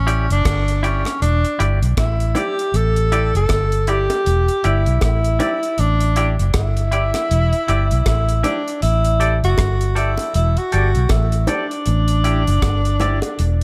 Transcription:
Already playing: fingered electric bass A1, tenor saxophone C#4
0.07 clean electric guitar E4 G4 D5, closed hi-hat
0.30 fingered electric bass F#1, tenor saxophone D4, closed hi-hat
0.45 fingered electric bass G1, kick, cross-stick, closed hi-hat, high bongo
0.68 closed hi-hat
0.83 tenor saxophone C#4, clean electric guitar E4 G4 D5, closed hi-hat
1.05 cross-stick, closed hi-hat, high bongo
1.22 fingered electric bass E1, tenor saxophone D4, closed hi-hat
1.45 closed hi-hat
1.59 fingered electric bass G1, clean electric guitar E4 G4 D5, closed hi-hat
1.82 fingered electric bass B1, closed hi-hat
1.97 fingered electric bass A1, tenor saxophone E4, kick, cross-stick, closed hi-hat, high bongo
2.20 closed hi-hat
2.35 clean electric guitar E4 G4 D5, tenor saxophone G4, closed hi-hat, low bongo
2.59 closed hi-hat
2.74 fingered electric bass A1, tenor saxophone A4, closed hi-hat
2.96 closed hi-hat
3.12 clean electric guitar E4 G4 D5, closed hi-hat
3.35 fingered electric bass F#1, tenor saxophone A4, closed hi-hat
3.49 fingered electric bass G1, kick, cross-stick, closed hi-hat, high bongo
3.72 closed hi-hat
3.87 clean electric guitar E4 G4 D5, tenor saxophone G4, closed hi-hat
4.10 muted clean electric guitar stroke, closed hi-hat, high bongo
4.26 fingered electric bass E1, closed hi-hat
4.48 closed hi-hat
4.64 fingered electric bass G1, clean electric guitar E4 G4 D5, tenor saxophone E4, closed hi-hat
4.86 fingered electric bass B1, closed hi-hat
5.01 fingered electric bass A1, tenor saxophone E4, kick, cross-stick, closed hi-hat, high bongo
5.24 closed hi-hat
5.39 clean electric guitar E4 G4 D5, closed hi-hat, low bongo
5.63 closed hi-hat
5.78 fingered electric bass A1, tenor saxophone D4, closed hi-hat
6.00 closed hi-hat
6.16 clean electric guitar E4 G4 D5, closed hi-hat
6.39 fingered electric bass F#1, closed hi-hat
6.54 fingered electric bass G1, tenor saxophone E4, kick, cross-stick, closed hi-hat, high bongo
6.77 closed hi-hat
6.92 clean electric guitar E4 G4 D5, closed hi-hat
7.14 muted clean electric guitar stroke, cross-stick, closed hi-hat, high bongo
7.31 fingered electric bass E1, closed hi-hat
7.53 closed hi-hat
7.68 fingered electric bass G1, clean electric guitar E4 G4 D5, closed hi-hat
7.91 fingered electric bass B1, closed hi-hat
8.06 fingered electric bass A1, tenor saxophone E4, kick, cross-stick, closed hi-hat, high bongo
8.29 closed hi-hat
8.43 tenor saxophone D4, clean electric guitar E4 G4 D5, closed hi-hat, low bongo
8.68 closed hi-hat
8.82 fingered electric bass A1, tenor saxophone E4, closed hi-hat
9.05 closed hi-hat
9.20 clean electric guitar G4 A4 D5, closed hi-hat
9.44 fingered electric bass F#1, tenor saxophone F#4, closed hi-hat
9.58 fingered electric bass G1, kick, cross-stick, closed hi-hat, high bongo
9.81 closed hi-hat
9.95 tenor saxophone E4, clean electric guitar G4 A4 D5, closed hi-hat
10.17 muted clean electric guitar stroke, closed hi-hat, high bongo
10.34 fingered electric bass E1, tenor saxophone E4, closed hi-hat
10.57 tenor saxophone F#4, closed hi-hat
10.72 fingered electric bass G1, clean electric guitar G4 A4 D5, closed hi-hat
10.95 fingered electric bass B1, closed hi-hat
11.09 fingered electric bass A1, tenor saxophone E4, kick, cross-stick, closed hi-hat, high bongo
11.32 closed hi-hat
11.47 tenor saxophone D4, clean electric guitar G4 A4 D5, closed hi-hat, low bongo
11.71 closed hi-hat
11.86 fingered electric bass A1, closed hi-hat
12.08 closed hi-hat
12.24 clean electric guitar E4 G4 D5, closed hi-hat
12.47 fingered electric bass F#1, closed hi-hat
12.62 fingered electric bass G1, kick, cross-stick, closed hi-hat, high bongo
12.85 closed hi-hat
13.00 clean electric guitar E4 G4 D5, closed hi-hat, low bongo
13.22 closed hi-hat, high bongo
13.39 fingered electric bass E1, closed hi-hat

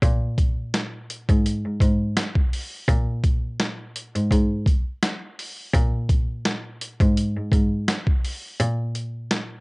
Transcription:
0.02 cello A#2, kick, closed hi-hat
0.38 kick, closed hi-hat
0.74 snare, closed hi-hat
1.10 closed hi-hat
1.29 cello G#2, kick, closed hi-hat
1.46 closed hi-hat
1.65 cello G#2
1.80 cello G#2, kick, closed hi-hat
2.17 snare, closed hi-hat
2.35 kick
2.53 open hi-hat
2.88 cello A#2, kick, closed hi-hat
3.24 kick, closed hi-hat
3.60 snare, closed hi-hat
3.96 closed hi-hat
4.15 cello G#2, closed hi-hat
4.31 cello G#2, kick, closed hi-hat
4.66 kick, closed hi-hat
5.03 snare, closed hi-hat
5.39 open hi-hat
5.74 cello A#2, kick, closed hi-hat
6.09 kick, closed hi-hat
6.45 snare, closed hi-hat
6.81 closed hi-hat
7.00 cello G#2, kick, closed hi-hat
7.17 closed hi-hat
7.37 cello G#2
7.52 cello G#2, kick, closed hi-hat
7.88 snare, closed hi-hat
8.07 kick
8.25 open hi-hat
8.60 cello A#2, closed hi-hat
8.95 closed hi-hat
9.31 snare, closed hi-hat

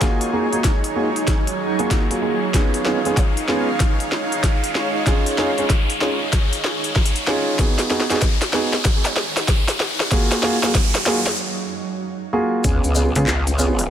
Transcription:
Already playing: ambient pad D#4 G#4 C#5, riser
0.01 ambient pad F#3, grand piano A#3 F4 F#4 G#4, kick, snare, closed hi-hat
0.21 closed hi-hat
0.33 grand piano A#3 F4 F#4 G#4
0.53 grand piano A#3 F4 F#4 G#4, closed hi-hat
0.64 kick, snare, closed hi-hat
0.84 closed hi-hat
0.96 grand piano A#3 F4 F#4 G#4
1.16 ambient pad F5, closed hi-hat
1.27 kick, snare, closed hi-hat
1.47 closed hi-hat
1.79 grand piano A#3 F4 F#4 G#4, closed hi-hat
1.91 kick, snare, closed hi-hat
2.10 grand piano A#3 F4 F#4 G#4, closed hi-hat
2.22 grand piano A#3 F4 F#4 G#4
2.54 grand piano B3 C#4 F4 G#4, kick, snare, closed hi-hat
2.74 closed hi-hat
2.85 grand piano B3 C#4 F4 G#4, snare
3.05 grand piano B3 C#4 F4 G#4, closed hi-hat
3.17 kick, snare, closed hi-hat
3.37 closed hi-hat
3.48 grand piano B3 C#4 F4 G#4, snare
3.80 kick, snare, closed hi-hat
4.00 closed hi-hat
4.12 snare
4.32 closed hi-hat
4.43 kick, snare, closed hi-hat
4.64 closed hi-hat
4.75 snare
5.06 grand piano C#4 D#4 F4 G#4, kick, snare, closed hi-hat
5.26 closed hi-hat
5.38 grand piano C#4 D#4 F4 G#4, snare
5.58 grand piano C#4 D#4 F4 G#4, closed hi-hat
5.70 kick, snare, closed hi-hat
5.90 closed hi-hat
6.01 grand piano C#4 D#4 F4 G#4, snare
6.33 kick, snare, closed hi-hat
6.53 closed hi-hat
6.64 snare
6.84 closed hi-hat
6.96 kick, snare
7.05 closed hi-hat
7.16 closed hi-hat
7.27 grand piano C#4 D#4 F4 G#4, snare
7.59 grand piano B3 D#4 F#4 G#4, kick, snare, closed hi-hat
7.79 snare, closed hi-hat
7.90 grand piano B3 D#4 F#4 G#4, snare
8.00 snare
8.10 grand piano B3 D#4 F#4 G#4, snare, closed hi-hat
8.16 snare
8.22 kick, snare, closed hi-hat
8.42 snare, closed hi-hat
8.53 grand piano B3 D#4 F#4 G#4, snare
8.73 snare
8.85 kick, snare, closed hi-hat
9.05 snare, closed hi-hat
9.16 snare
9.37 snare, closed hi-hat
9.48 kick, snare, closed hi-hat
9.68 snare, closed hi-hat
9.80 snare
10.00 snare
10.11 grand piano A#3 F4 F#4 G#4, kick, snare, closed hi-hat
10.32 snare, closed hi-hat
10.43 grand piano A#3 F4 F#4 G#4, snare
10.63 grand piano A#3 F4 F#4 G#4, snare, closed hi-hat
10.75 kick, snare, closed hi-hat
10.95 snare, closed hi-hat
11.06 grand piano A#3 F4 F#4 G#4, snare
11.26 snare, closed hi-hat
12.33 grand piano A#3 F4 F#4 G#4
12.64 wobble bass C#2, grand piano B3 C#4 F4 G#4, kick, closed hi-hat, sub drop, shaker
12.84 closed hi-hat, shaker
12.95 grand piano B3 C#4 F4 G#4, shaker
13.15 fm bass C#2, grand piano B3 C#4 F4 G#4, closed hi-hat, shaker
13.27 wobble bass C#2, clap, shaker
13.47 closed hi-hat, shaker
13.59 grand piano B3 C#4 F4 G#4, closed hi-hat, shaker
13.79 closed hi-hat, shaker

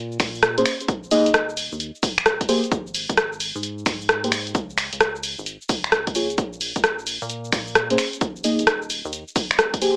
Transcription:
Already playing: analog synth bass A#2
0.12 shaker
0.20 analog synth bass A#2, finger snap, kick, open hi-hat, shaker
0.35 shaker
0.43 cross-stick, closed hi-hat, shaker
0.58 synth stab A#3 C#4 G#4 C5, closed hi-hat, shaker
0.66 finger snap, open hi-hat, shaker
0.81 closed hi-hat, shaker
0.88 analog synth bass D#1, kick, closed hi-hat, shaker
1.03 shaker
1.11 synth stab A#3 D#4 G#4 D#5, open hi-hat, shaker
1.26 analog synth bass D#1, closed hi-hat, shaker
1.34 cross-stick, closed hi-hat, shaker
1.49 shaker
1.57 open hi-hat, shaker
1.72 analog synth bass D#2, shaker
1.80 closed hi-hat, shaker
1.95 shaker
2.03 analog synth bass D#1, kick, open hi-hat, shaker
2.18 finger snap, shaker
2.26 cross-stick, closed hi-hat, shaker
2.41 kick, closed hi-hat, shaker
2.49 synth stab A#3 G4 G#4 C5, open hi-hat, shaker
2.64 closed hi-hat, shaker
2.72 analog synth bass G#1, kick, closed hi-hat, shaker
2.87 shaker
2.94 open hi-hat, shaker
3.09 analog synth bass G#1, kick, closed hi-hat, shaker
3.17 cross-stick, closed hi-hat, shaker
3.32 shaker
3.40 open hi-hat, shaker
3.55 analog synth bass G#2, shaker
3.63 closed hi-hat, shaker
3.78 shaker
3.86 analog synth bass G#2, finger snap, kick, open hi-hat, shaker
4.01 shaker
4.09 cross-stick, closed hi-hat, shaker
4.24 synth stab A#3 G4 G#4 C5, closed hi-hat, shaker
4.32 finger snap, open hi-hat, shaker
4.47 closed hi-hat, shaker
4.55 analog synth bass C#2, kick, closed hi-hat, shaker
4.70 shaker
4.78 finger snap, open hi-hat, shaker
4.93 analog synth bass C#2, closed hi-hat, shaker
5.01 cross-stick, closed hi-hat, shaker
5.16 shaker
5.23 open hi-hat, shaker
5.38 analog synth bass G#1, shaker
5.46 closed hi-hat, shaker
5.61 shaker
5.69 analog synth bass C#2, kick, open hi-hat, shaker
5.84 finger snap, shaker
5.92 cross-stick, closed hi-hat, shaker
6.07 kick, closed hi-hat, shaker
6.15 synth stab A#3 F4 G#4 C#5, open hi-hat, shaker
6.30 closed hi-hat, shaker
6.38 analog synth bass A#1, kick, closed hi-hat, shaker
6.53 shaker
6.61 open hi-hat, shaker
6.76 analog synth bass A#1, kick, closed hi-hat, shaker
6.84 cross-stick, closed hi-hat, shaker
6.99 shaker
7.07 open hi-hat, shaker
7.22 analog synth bass A#2, shaker
7.30 closed hi-hat, shaker
7.45 shaker
7.52 analog synth bass A#2, finger snap, kick, open hi-hat, shaker
7.67 shaker
7.75 cross-stick, closed hi-hat, shaker
7.90 synth stab A#3 C#4 G#4 C5, closed hi-hat, shaker
7.98 finger snap, open hi-hat, shaker
8.13 closed hi-hat, shaker
8.21 analog synth bass D#1, kick, closed hi-hat, shaker
8.36 shaker
8.44 synth stab A#3 D#4 G#4 D#5, open hi-hat, shaker
8.59 analog synth bass D#1, closed hi-hat, shaker
8.67 cross-stick, closed hi-hat, shaker
8.82 shaker
8.90 open hi-hat, shaker
9.05 analog synth bass D#2, shaker
9.13 closed hi-hat, shaker
9.28 shaker
9.36 analog synth bass D#1, kick, open hi-hat, shaker
9.51 finger snap, shaker
9.59 cross-stick, closed hi-hat, shaker
9.74 kick, closed hi-hat, shaker
9.82 synth stab A#3 G4 G#4 C5, open hi-hat, shaker

